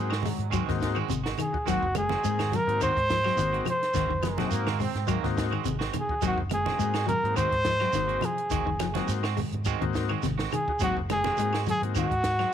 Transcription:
Already playing: G#2 G#3 A#3 C4 D#4 F#4
0.10 G#3 C4 F#4, snare, claves
0.23 F#3 G#3, snare, open hi-hat, high conga, low conga, shekere
0.38 G#2, closed hi-hat
0.50 D#3 F#3 G#3 C4 F#4, kick, closed hi-hat, claves, shekere
0.68 G#2 D#3 A#3 C4 D#4 F#4, kick, snare, closed hi-hat
0.80 G#3, kick, snare, closed hi-hat, shekere
0.95 D#3 G#3 C4 F#4, claves
1.08 G#1 C3, closed hi-hat, high conga, shekere
1.24 G#3 F#4, snare, closed hi-hat
1.38 D#3 G#4, closed hi-hat, low conga, claves, shekere
1.53 D#4 F#4, kick
1.66 G#1 D#3 F#3 G#3 A#3 C4 D#4 F#4, kick, snare, closed hi-hat, shekere
1.83 F#1, kick
1.95 G#3 G#4, closed hi-hat, high conga, claves, shekere
2.09 G#3 C4 F#4, snare, high conga
2.24 G#2 G#3 A#3 C4 D#4 G#4, closed hi-hat, shekere
2.39 G#3 C4 F#4, snare, closed hi-hat, high conga, claves
2.52 F#3 A#4, snare, closed hi-hat, high conga, low conga, shekere
2.67 G#2 A#3 C4 D#4 F#4, closed hi-hat
2.81 D#3 G#3 C4 F#4 C5, kick, closed hi-hat, claves, shekere
2.97 G#2, kick, closed hi-hat
3.09 F3, kick, snare, closed hi-hat, shekere
3.24 F#3 G#3 C4 F#4, snare, claves
3.35 G#1 D#3 A#3 C4 D#4 F#4, closed hi-hat, high conga, shekere
3.52 G#3 C4 F#4, closed hi-hat
3.65 F3, closed hi-hat, low conga, claves, shekere
3.70 C5
3.83 snare, closed hi-hat
3.94 G#1 D#3 G#3 C4 F#4, kick, snare, closed hi-hat, shekere
4.09 F#1 D#3, kick
4.22 F3 G#3 D#4 F#4, snare, closed hi-hat, high conga, claves, shekere
4.38 F#3 G#3 A#3 C4 D#4 F#4, snare, closed hi-hat, high conga, low conga
4.51 G#2 A#3, closed hi-hat, shekere
4.67 G#3 C4 F#4, snare, high conga, claves
4.79 G#3 C4, open hi-hat, high conga, low conga, shekere
4.95 G#2, snare, closed hi-hat
5.07 D#3 F#3 G#3 A#3 C4 F#4, kick, closed hi-hat, claves, shekere
5.23 G#2 D#3 A#3 C4 D#4 F#4, kick, snare, closed hi-hat
5.37 G#3, kick, snare, closed hi-hat, shekere
5.51 D#3 G#3 C4 F#4, claves
5.64 G#1 C3, closed hi-hat, high conga, shekere
5.79 G#3 C4 F#4, snare, closed hi-hat
5.93 D#3, closed hi-hat, high conga, low conga, claves, shekere
6.00 G#4
6.09 D#4 F#4, kick
6.22 G#1 D#3 F#3 G#3 A#3 C4 D#4 F#4, kick, closed hi-hat, shekere
6.27 F#4
6.38 F#1, kick
6.50 G#3, closed hi-hat, high conga, claves, shekere
6.54 G#4
6.65 G#3 C4 F#4, snare, high conga, low conga
6.79 G#2 G#3 A#3 C4 D#4 F#4, closed hi-hat, shekere
6.94 G#3 C4 F#4, snare, closed hi-hat, claves
7.07 F#3 A#4, closed hi-hat, high conga, low conga, shekere
7.23 G#2 A#3 C4 D#4 F#4, closed hi-hat
7.35 D#3 G#3 C4 F#4 C5, kick, closed hi-hat, claves, shekere
7.52 G#2, kick, closed hi-hat
7.65 F3, kick, snare, closed hi-hat, shekere
7.80 F#3 G#3 C4 F#4, snare, claves
7.93 G#1 D#3 A#3 C4 D#4, snare, closed hi-hat, high conga, shekere
7.97 F#4
8.08 G#3 C4 F#4, closed hi-hat
8.21 F3, closed hi-hat, low conga, claves, shekere
8.25 G#4
8.38 closed hi-hat
8.50 G#1 D#3 G#3 C4 F#4, kick, closed hi-hat, shekere
8.66 F#1 D#3, kick
8.79 F3 D#4 F#4, snare, closed hi-hat, high conga, claves, shekere
8.94 F#3 G#3 A#3 C4 D#4 F#4, snare, closed hi-hat, high conga
9.08 G#2, snare, closed hi-hat, shekere
9.23 G#3 C4 F#4, snare, claves
9.37 G#3, open hi-hat, high conga, low conga, shekere
9.52 G#2, closed hi-hat, high conga
9.65 D#3 G#3 C4 F#4, muted clean electric guitar stroke, kick, closed hi-hat, claves, shekere
9.81 G#2 D#3 A#3 C4 D#4 F#4, kick, closed hi-hat
9.94 kick, snare, closed hi-hat, shekere
10.09 D#3 G#3 C4 F#4, claves
10.22 G#1 C3, snare, closed hi-hat, high conga, shekere
10.38 G#3 C4 F#4, snare, closed hi-hat
10.51 D#3 G#4, closed hi-hat, low conga, claves, shekere
10.68 D#4 F#4, kick
10.80 G#1 D#3 F#3 G#3 A#3 C4 D#4 F#4, kick, closed hi-hat, shekere
10.97 F#1, kick
11.10 G#3 G#4, snare, closed hi-hat, high conga, claves, shekere
11.24 G#3 C4 F#4, snare, high conga, low conga
11.37 G#2 G#3 A#3 C4 D#4 F#4, closed hi-hat, shekere
11.53 G#3 C4 F#4, snare, closed hi-hat, claves
11.66 F#3, closed hi-hat, high conga, low conga, shekere
11.70 G#4
11.82 G#2 A#3 C4 D#4 F#4, closed hi-hat
11.95 D#3 G#3 C4 F#4, kick, closed hi-hat, claves, shekere
11.99 F#4
12.11 G#2, kick, closed hi-hat
12.24 muted clean electric guitar stroke, kick, snare, closed hi-hat, shekere
12.39 F#3 G#3 C4 F#4, snare, claves

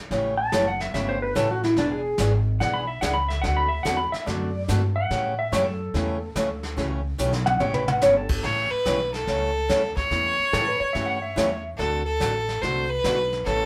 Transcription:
0.11 A1 C#3 E3 A3 C#4 G4, brush sweep, kick, snare
0.37 A5
0.52 F#1 C#3 E3 A3 C#4 G4, kick, snare, hi-hat pedal
0.67 F#5
0.80 E5, snare
0.94 G1 C#3 E3 A3 C#4 G4 E5, brush sweep, kick, snare
1.09 C5
1.22 B4
1.35 A1 C#3 E3 A3 C#4 G4 A4, kick, snare, hi-hat pedal
1.51 F#4
1.63 E4, snare
1.76 E1 E3 B3 D4 G#4, brush sweep, kick, snare
1.92 G#4
2.18 G#1 E3 B3 D4 G#4, kick, snare, hi-hat pedal
2.60 B1 E3 B3 D4 G#4 F#5, brush sweep, kick, snare
2.74 B5
2.87 E5
3.01 C#2 E3 B3 D4 G#4 F#5, kick, snare, hi-hat pedal
3.14 B5
3.28 E5, snare
3.42 D2 D3 A3 C4 F#4 A4 F#5, brush sweep, kick, snare
3.57 B5
3.69 E5
3.83 E2 D3 A3 C4 F#4 A4 F#5, kick, snare, hi-hat pedal
3.97 B5
4.12 E5, muted upright bass stroke, snare
4.26 F#2 D3 A3 C4 F#4 A4 D5, brush sweep, kick, snare
4.68 G2 D3 A3 C4 F#4 A4, kick, snare, hi-hat pedal
4.96 F#5
5.10 A2 C#3 E3 A3 C#4 G4, brush sweep, kick, snare
5.39 E5
5.52 F#2 C#3 E3 A3 C#4 G4 C#5, kick, snare, hi-hat pedal
5.65 A4
5.94 E2 C#3 E3 A3 C#4 G4, brush sweep, kick, snare
6.35 D2 C#3 E3 A3 C#4 G4, kick, snare, hi-hat pedal
6.63 snare
6.76 C#2 C#3 E3 A3 C#4 G4, brush sweep, kick, snare
7.18 B1 C#3 E3 A3 C#4 G4, hi-hat pedal
7.33 snare
7.46 F#5, high tom
7.60 A1 C#3 E3 A3 C#4 G4 C#5, mid tom
7.74 B4, mid tom
7.88 F#5, mid tom
8.01 G1 C#3 E3 A3 C#4 G4 C#5, snare, hi-hat pedal
8.17 A4
8.29 kick, crash
8.43 A1 C#3 E3 A3 C#4 G4 C#5, brush sweep, kick, snare
8.71 B4, muted upright bass stroke
8.85 B1 C#3 E3 A3 C#4 G4, kick, snare, hi-hat pedal
9.14 A4, snare
9.27 C#2 C#3 E3 A3 C#4 G4, brush sweep, kick, snare
9.69 D2 C#3 E3 A3 C#4 G4, kick, snare, hi-hat pedal
9.97 C#5, kick, snare
10.10 E2 C#3 E3 A3 C#4 G4, brush sweep, kick, snare
10.39 muted upright bass stroke
10.52 A2 C#3 E3 A3 C#4 G4 A4, kick, snare, hi-hat pedal
10.68 B4
10.80 C#5, muted upright bass stroke
10.93 G2 C#3 E3 A3 C#4 G4 E5, brush sweep, kick, snare
11.06 F#5
11.22 E5
11.36 E2 C#3 E3 A3 C#4 G4, kick, snare, hi-hat pedal
11.77 D2 D3 A3 C4 F#4 A4, brush sweep, kick, snare
12.05 A4
12.20 A1 D3 A3 C4 F#4 A4, kick, snare, hi-hat pedal
12.49 snare
12.61 C2 D3 A3 C4 F#4 A4 C5, brush sweep, kick, snare
12.89 B4
13.04 B1 D3 A3 C4 F#4 A4, kick, snare, hi-hat pedal
13.33 snare
13.45 A1 C#3 E3 A3 C#4 G4 A4, brush sweep, kick, snare

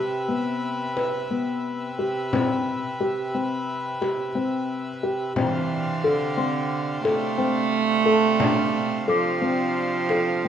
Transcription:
Already playing: C3 G4 B4 E5 A5
0.28 B3
0.96 B4, frame drum
1.31 B3
1.99 G4
2.33 C4, frame drum
3.00 G4
3.35 C4
4.01 G4, frame drum
4.35 C4
5.03 G4
5.36 C3 E3 C4 D4 C5 F5, frame drum
6.04 D3 A4
6.37 C4 C6
7.05 A3 A4, frame drum
7.38 C4
8.05 A4 A5
8.40 D4, frame drum
9.08 F3 A4 D6
9.42 C4
10.09 A4, frame drum
10.45 C4

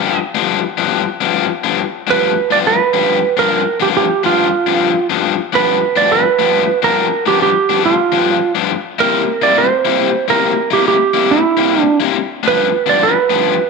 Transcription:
Already playing: G2 F3 B3 D4 G5
0.35 G2 F3 B3 D4
0.78 G2 F3 B3 D4
1.21 G2 F3 B3 D4
1.64 G2 F3 B3 D4
2.07 G2 F3 B3 D4 B4
2.51 G2 F3 B3 D4 D5
2.67 B4
2.94 G2 F3 B3 D4
3.37 G2 F3 B3 D4 A#4
3.80 G2 F3 B3 D4 G4
3.97 G4
4.24 G2 F3 B3 D4 F4
4.67 G2 F3 B3 D4
5.10 G2 F3 B3 D4
5.53 G2 F3 B3 D4 B4
5.96 G2 F3 B3 D4 D5
6.12 B4
6.39 G2 F3 B3 D4
6.82 G2 F3 B3 D4 A#4
7.26 G2 F3 B3 D4 G4
7.42 G4
7.69 G2 F3 B3 D4
7.85 F4
8.12 G2 F3 B3 D4
8.55 G2 F3 B3 D4
8.99 C3 G3 A#3 E4 A#4
9.42 C3 G3 A#3 E4 D5
9.58 C5
9.85 C3 G3 A#3 E4
10.28 C3 G3 A#3 E4 A#4
10.71 C3 G3 A#3 E4 G4
10.88 G4
11.14 C3 G3 A#3 E4
11.31 E4
11.57 C3 G3 A#3 E4
11.81 D4
12.00 C3 G3 A#3 E4
12.43 G2 F3 B3 D4
12.48 B4
12.86 G2 F3 B3 D4 D5
13.03 B4
13.30 G2 F3 B3 D4

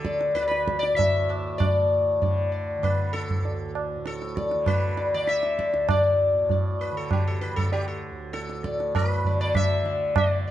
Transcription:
Already playing: D2 A2 D3 A4
0.05 D5, tabla ke
0.21 tabla te
0.33 D2 B4 D5, tabla te
0.42 D5
0.48 B4, tabla te
0.68 tabla ke
0.79 D5, tabla te
0.92 A2 E5
0.97 D5, tabla tin, tabla ge
1.29 D5, tabla na
1.58 A2 D5, tabla na, tabla ge
2.19 D3 D5, tabla tin, tabla ge
2.52 D5
2.78 D3
2.83 B4, tabla na, tabla ge
3.13 A4, tabla te
3.30 tabla ge
3.37 D2
3.45 tabla tin
3.75 tabla na
3.96 A2
4.06 A4, tabla te
4.22 tabla te
4.37 D5, tabla ke
4.51 D3, tabla te
4.66 B4, tabla na, tabla ge
4.97 D5, tabla te
5.14 D3 D5
5.27 E5, tabla te
5.43 tabla te
5.59 D5, tabla ke
5.73 D2, tabla te
5.89 D5, tabla na, tabla ge
6.33 A2
6.49 D5, tabla tin, tabla ge
6.81 B4
6.91 D3
6.97 A4
7.11 G4, tabla na, tabla ge
7.27 A4
7.41 B4, tabla te
7.50 D3
7.56 A4, tabla ge
7.72 G4, tabla tin
7.88 A4
8.10 D2
8.33 A4, tabla te
8.50 tabla te
8.64 A2 D5, tabla ke
8.80 tabla te
8.95 B4, tabla na, tabla ge
9.25 D3 D5, tabla ge
9.41 D5
9.55 E5, tabla na, tabla ge
9.83 D3 D5, tabla te
10.16 D5, tabla na, tabla ge
10.43 D2
10.47 D5

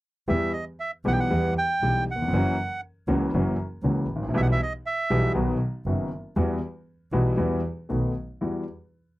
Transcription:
0.28 E2 E3 G3 B3 G4 E5
0.53 D#5
0.80 E5
1.05 B1 B2 E3 G3 B3 G4 F#5
1.13 G5
1.20 F#5
1.30 E2 E3 G3 B3 G4
1.58 G5
1.81 B1 B2 E3 G3 B3 G4
2.11 F#5
2.15 D#2
2.22 E2
2.28 F2
2.32 F#1 F#2 E3 F#3 A#3 C#4 F#4
3.08 C#2 C#3 E3 A#3 C#4 F#4
3.32 F#1 F#2 E3 F#3 A#3 C#4 F#4
3.83 C#2 C#3 E3 A#3 C#4 F#4
4.10 A1
4.16 G#1
4.22 A1
4.28 A#1
4.33 B1 B2 E3 G3 B3 G4 E5
4.42 F#5
4.52 E5
4.63 D#5
4.86 E5
5.10 B1 B2 E3 G3 B3 G4
5.35 B1 B2 D#3 F#3 B3 F#4
5.86 F#1 F#2 D#3 F#3 B3 F#4
6.36 E2 E3 G3 B3 F#4
7.12 B1 B2 E3 G3 B3 F#4
7.37 E2 E3 G3 B3 F#4
7.89 B1 B2 D#3 A3 B3 F#4
8.41 E2 G3 E4 F#4

